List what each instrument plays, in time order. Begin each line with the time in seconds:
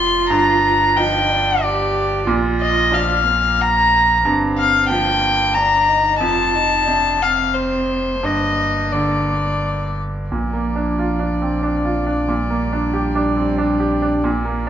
Already playing: sub bass F1, grand piano F2 C3, cello F4, violin C6
0.30 sub bass G1, grand piano G2, violin A#5
0.97 grand piano F3, cello D#4, violin G5
1.30 cello D4
1.62 cello G4, violin D5
2.27 sub bass A#1, grand piano A#2, cello F4
2.61 violin D#5
2.91 grand piano F3, cello D4, violin F5
3.24 cello A#3
3.61 violin A#5
4.25 sub bass G1, grand piano G2, cello C4
4.58 violin F5
4.89 grand piano F3, cello A#3, violin G5
5.54 cello D4, violin A#5
5.88 cello D#4
6.19 sub bass F1, grand piano F2, cello F4, violin A5
6.55 cello D#4
6.87 grand piano C3, cello D4
7.21 cello C4, violin F5
7.54 violin C5
8.23 sub bass G1, grand piano G2, cello A#3, violin D#5
8.92 grand piano D3, violin D5
10.31 sub bass A#1, grand piano A#2, cello F3, violin D5
10.53 grand piano A#3
10.76 grand piano D4
10.99 grand piano F4
11.19 grand piano D4
11.42 grand piano C4
11.63 grand piano D4
11.85 grand piano F4
12.07 grand piano D4
12.28 grand piano A#2, cello G3
12.50 grand piano A#3
12.73 grand piano D4
12.93 grand piano G4
13.15 grand piano D4
13.37 grand piano C4
13.58 grand piano D4
13.80 grand piano G4
14.02 grand piano D4
14.23 grand piano A#2, cello F3, violin D5
14.45 grand piano A#3